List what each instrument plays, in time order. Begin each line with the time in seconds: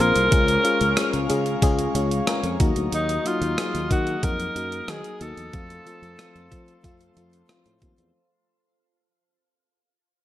Already playing: fm electric piano A#3 G#4, glass harmonica A#4 C5 F5 C6
0.00 fretless electric bass A#1, fm electric piano C4 F4 A#4, alto saxophone A#4
0.16 fretless electric bass C2, closed hi-hat
0.31 fretless electric bass C#2, fm electric piano G#3 C#4 F4 G#4, glass harmonica G#4 C#5 F5 C#6, kick, closed hi-hat
0.48 closed hi-hat
0.63 fm electric piano G#3 C#4 F4 G#4, closed hi-hat
0.81 fretless electric bass C#2, closed hi-hat
0.96 fm electric piano G#3 C#4 F4 G#4, cross-stick, closed hi-hat
1.13 fretless electric bass C#2, closed hi-hat
1.29 fretless electric bass C#3, fm electric piano G#3 C#4 F4 G#4, closed hi-hat
1.46 closed hi-hat
1.62 fretless electric bass C#2, fm electric piano G#3 C#4 F4 G#4, kick, closed hi-hat
1.79 closed hi-hat
1.95 fretless electric bass C#2, fm electric piano G#3 C#4 F4 G#4 F5, closed hi-hat
2.11 closed hi-hat
2.26 fm electric piano G#3 C#4 F4 A#4 G#5, cross-stick, closed hi-hat
2.43 fretless electric bass F2, closed hi-hat
2.60 fretless electric bass D#2, fm electric piano F#3 A#3 D#4 F#4 A#5, glass harmonica A#3 D#5 D#6, kick, closed hi-hat
2.76 fretless electric bass D2, closed hi-hat
2.92 fretless electric bass D#2, alto saxophone D#4, closed hi-hat
3.09 closed hi-hat
3.25 fm electric piano F#3 A#3 D#4 F#4, alto saxophone F4, closed hi-hat
3.41 fretless electric bass D#2, closed hi-hat
3.57 fm electric piano F#3 A#3 D#4 G#4, cross-stick, closed hi-hat
3.75 fretless electric bass D#2, closed hi-hat
3.90 fretless electric bass D#3, fm electric piano F#3 A#3 D#4 F#4, alto saxophone F#4, kick, closed hi-hat
4.07 closed hi-hat
4.23 fretless electric bass F2, fm electric piano F#3 A#3 D#4 F#4, alto saxophone A#4, kick, closed hi-hat
4.40 closed hi-hat
4.55 fretless electric bass F#2, fm electric piano F#3 A#3 D#4 F#4, closed hi-hat
4.72 closed hi-hat
4.88 fretless electric bass D#3, fm electric piano F#3 A#3 D#4 F#4, alto saxophone G#4, cross-stick, closed hi-hat
5.04 closed hi-hat
5.20 fretless electric bass D#2, fm electric piano F#3 A#3 D#4 F#4, alto saxophone A4, closed hi-hat
5.37 fretless electric bass E2, closed hi-hat
5.53 fretless electric bass F2, fm electric piano F3 A3 C4 F4, glass harmonica A4 C5 F5 C6, kick, closed hi-hat
5.70 closed hi-hat
5.86 fm electric piano F3 A3 C4 F4, closed hi-hat
6.02 fretless electric bass F2, closed hi-hat
6.18 fm electric piano F3 A3 C4 F4, cross-stick, closed hi-hat
6.35 fretless electric bass F2, closed hi-hat
6.51 fm electric piano F3 A3 C4 F4, fretless electric bass F3, kick, closed hi-hat
6.68 closed hi-hat
6.83 fretless electric bass F2, fm electric piano F3 A3 C4 F4, kick, closed hi-hat
7.01 closed hi-hat
7.16 fretless electric bass F2, fm electric piano F3 A3 C4 F4, closed hi-hat
7.33 closed hi-hat
7.49 fm electric piano F3 A3 C4 F4, cross-stick, closed hi-hat
7.66 fretless electric bass A2, closed hi-hat
7.82 fretless electric bass D#2, fm electric piano F3 A3 C4 F4, kick, closed hi-hat
7.98 fretless electric bass E2, closed hi-hat